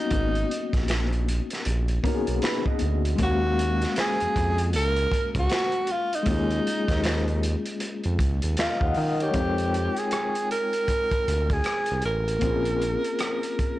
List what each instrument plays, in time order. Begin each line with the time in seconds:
Already playing: reed electric piano A#3 B3 C#4 D#4 F#4, tenor saxophone D#4
0.11 analog synth bass G#1, kick, closed hi-hat
0.35 closed hi-hat
0.51 closed hi-hat
0.73 analog synth bass A#1, kick, snare, closed hi-hat
0.88 finger snap, snare, closed hi-hat
1.13 closed hi-hat
1.28 closed hi-hat
1.50 snare, closed hi-hat
1.65 analog synth bass A#1, closed hi-hat
1.88 closed hi-hat
2.03 reed electric piano A#3 B3 C#4 D#4, clean electric guitar C#4 A#4, kick, closed hi-hat
2.08 reed electric piano F#4
2.15 reed electric piano G#4
2.27 analog synth bass B1, closed hi-hat
2.42 clean electric guitar D#4 B4, finger snap, snare, closed hi-hat
2.66 clean electric guitar F#4 D#5, kick
2.79 analog synth bass D2, closed hi-hat
3.05 closed hi-hat
3.16 analog synth bass D#2, reed electric piano G#3 A#3, kick, closed hi-hat
3.21 reed electric piano C#4 F5, tenor saxophone F#4
3.26 reed electric piano F#4
3.59 closed hi-hat
3.82 snare, closed hi-hat
3.96 tenor saxophone G#4, finger snap, snare, closed hi-hat
4.20 analog synth bass F2, closed hi-hat
4.36 analog synth bass F2, kick, closed hi-hat
4.58 closed hi-hat
4.73 analog synth bass C#2, tenor saxophone A#4, closed hi-hat
4.96 closed hi-hat
5.12 kick, closed hi-hat
5.35 analog synth bass C#2, kick, closed hi-hat
5.39 tenor saxophone F#4
5.50 finger snap, snare, closed hi-hat
5.72 closed hi-hat
5.87 closed hi-hat
5.91 tenor saxophone F4
6.13 tenor saxophone D#4, closed hi-hat
6.23 reed electric piano G#3 A#3, kick, closed hi-hat
6.27 analog synth bass D#2, reed electric piano C#4 F4
6.33 reed electric piano G#4
6.50 closed hi-hat
6.67 closed hi-hat
6.88 analog synth bass D#2, kick, snare, closed hi-hat
7.04 finger snap, snare, closed hi-hat
7.28 closed hi-hat
7.43 closed hi-hat
7.66 closed hi-hat
7.80 closed hi-hat
8.04 analog synth bass F2, closed hi-hat
8.19 analog synth bass C#2, kick, closed hi-hat
8.42 analog synth bass D#2, closed hi-hat
8.57 analog synth bass D#2, tenor saxophone F4, reed electric piano D#5, finger snap, snare, closed hi-hat
8.81 analog synth bass D#2, reed electric piano D#5 F#5, kick
8.94 analog synth bass D#3, reed electric piano D#5, open hi-hat
9.20 tenor saxophone G4, reed electric piano A#4 C#5, closed hi-hat
9.31 analog synth bass F2, reed electric piano G#3 C4, kick, closed hi-hat
9.35 reed electric piano D#4 F4
9.40 reed electric piano G5
9.58 closed hi-hat
9.74 closed hi-hat
9.96 tenor saxophone G#4, cross-stick, closed hi-hat
10.11 cross-stick, closed hi-hat
10.35 closed hi-hat
10.51 tenor saxophone A#4, closed hi-hat
10.73 closed hi-hat
10.88 kick, closed hi-hat
11.11 kick, closed hi-hat
11.28 analog synth bass D2, closed hi-hat
11.50 tenor saxophone G#4, kick, closed hi-hat
11.64 cross-stick, closed hi-hat
11.86 closed hi-hat
11.91 analog synth bass C2
12.02 analog synth bass A1, tenor saxophone A#4, closed hi-hat
12.28 closed hi-hat
12.39 analog synth bass A#1, reed electric piano A#3 C4, kick, closed hi-hat
12.44 reed electric piano C#4 F4
12.49 reed electric piano G#4
12.65 closed hi-hat
12.82 closed hi-hat
13.04 closed hi-hat
13.19 cross-stick, closed hi-hat
13.43 closed hi-hat
13.59 kick, closed hi-hat